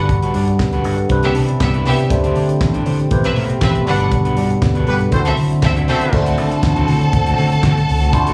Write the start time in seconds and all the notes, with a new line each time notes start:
Already playing: G1 D3 G3 D4 F#4 A4 B4
0.09 muted clean electric guitar stroke, kick, closed hi-hat
0.23 D4 F#4 B4, closed hi-hat
0.34 G2 D4 F#4 D5, open hi-hat
0.47 muted clean electric guitar stroke, closed hi-hat
0.59 D2, muted clean electric guitar stroke, kick, snare, clap
0.73 D4 F#4 B4, closed hi-hat
0.84 G2 D4 F#4 B4, open hi-hat
0.98 muted clean electric guitar stroke, closed hi-hat
1.09 C2 C3 C4 D4 E4 B4, muted clean electric guitar stroke, kick, closed hi-hat
1.23 B3 D4 E4 G4 B4 E5, closed hi-hat
1.34 C3 D4 E4 B4, open hi-hat
1.49 muted clean electric guitar stroke, closed hi-hat
1.60 C2 B3 G4 E5, muted clean electric guitar stroke, kick, snare, clap
1.74 D4 E4 B4, closed hi-hat
1.85 C3 B3 D4 E4 G4 B4 E5, open hi-hat
1.99 muted clean electric guitar stroke, closed hi-hat
2.09 D2 D3 A3 D4 E4 G4 C5, muted clean electric guitar stroke, kick, closed hi-hat
2.24 D4 G4 C5, closed hi-hat
2.35 D3 D4 G4 D5, open hi-hat
2.49 muted clean electric guitar stroke, closed hi-hat
2.61 A1, muted clean electric guitar stroke, kick, snare, clap
2.74 D4 G4 C5, closed hi-hat
2.85 D3 D4 G4 C5, open hi-hat
2.99 muted clean electric guitar stroke, closed hi-hat
3.11 A1 B2 C3 A3 E4 G4 B4 C5, muted clean electric guitar stroke, kick, closed hi-hat
3.24 C4 G4 B4 E5, closed hi-hat
3.36 A2 C4 G4 B4, open hi-hat
3.50 muted clean electric guitar stroke, closed hi-hat
3.61 A1 C4 G4 B4 E5, kick, snare, clap
3.74 muted clean electric guitar stroke, closed hi-hat
3.85 G1 D3 G3 D4 F#4 A4 B4 F#5, muted clean electric guitar stroke, open hi-hat
4.00 D4 F#4 B4, closed hi-hat
4.12 muted clean electric guitar stroke, kick, closed hi-hat
4.25 D4 F#4 B4, closed hi-hat
4.37 G2 D4 F#4 D5, open hi-hat
4.50 muted clean electric guitar stroke, closed hi-hat
4.62 D2, muted clean electric guitar stroke, kick, snare, clap
4.75 D4 F#4 B4, closed hi-hat
4.87 G2 B3 D4 F#4 G4 B4, open hi-hat
5.01 muted clean electric guitar stroke, closed hi-hat
5.11 D2 D3 F#3 C4 D4 E4 F#4 A4 C5, muted clean electric guitar stroke, kick, closed hi-hat
5.25 C4 A4 E5, closed hi-hat
5.37 D3, open hi-hat
5.51 muted clean electric guitar stroke, closed hi-hat
5.62 D2 C4 A4 E5, muted clean electric guitar stroke, kick, snare, clap
5.76 C4 E4 F#4, closed hi-hat
5.88 D3 C4 E4 F#4 A4 C5 E5, open hi-hat
6.01 muted clean electric guitar stroke, closed hi-hat
6.12 D2 D3 A3 C4 D4 E4 F#4 A4 C5 A5, muted clean electric guitar stroke, kick, crash
6.25 A3 C4 F#4, closed hi-hat
6.37 D3 A3 C4 A4, open hi-hat
6.51 muted clean electric guitar stroke, closed hi-hat
6.63 D2, muted clean electric guitar stroke, kick, snare, clap
6.76 D2 A3 C4 F#4, closed hi-hat
6.88 D3 A3 C4 F#4, open hi-hat
7.01 muted clean electric guitar stroke, closed hi-hat
7.12 D2, muted clean electric guitar stroke, kick, closed hi-hat
7.26 A3 C4 F#4, closed hi-hat
7.37 D3 A3 C4 F#4, open hi-hat
7.51 muted clean electric guitar stroke, closed hi-hat
7.61 D3 A3 C4 F#4, kick, snare, clap
7.76 muted clean electric guitar stroke, closed hi-hat
7.87 C#2, muted clean electric guitar stroke, open hi-hat
8.01 A3 C4 F#4, closed hi-hat
8.11 D2 D3 D4 E4 F4 C5, muted clean electric guitar stroke, kick, closed hi-hat
8.20 F#4
8.26 A3 C4 F#4, closed hi-hat